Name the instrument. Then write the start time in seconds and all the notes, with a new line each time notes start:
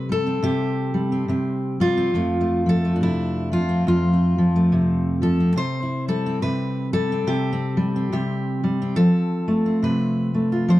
steel-string acoustic guitar
Already playing: C3 C4 G4
0.09 G3 A4
0.26 C4
0.43 C3 G4
0.94 G3
1.12 C4
1.28 C3 C4
1.80 G3 F4
1.97 C4
2.14 F2 F3 A3
2.41 A3
2.66 F3 A4
2.85 A3
2.96 D4
3.01 C3 E4
3.52 F3 F4
3.69 C4
3.87 F2 F4
4.13 C4
4.38 F3
4.56 A3
4.72 C3
5.22 F3 A4
5.40 C4
5.56 C3 C5
5.83 E4
6.08 G3 A4
6.26 C4
6.42 C3 B4
6.93 G3 A4
7.12 C4
7.27 C3 G4
7.53 C4
7.77 G3
7.96 C4
8.12 C3 G4
8.64 G3
8.82 C4
8.96 F3 A4
9.48 A3
9.66 C4
9.82 C3 B4
10.34 A3
10.52 F4
10.68 F3 C5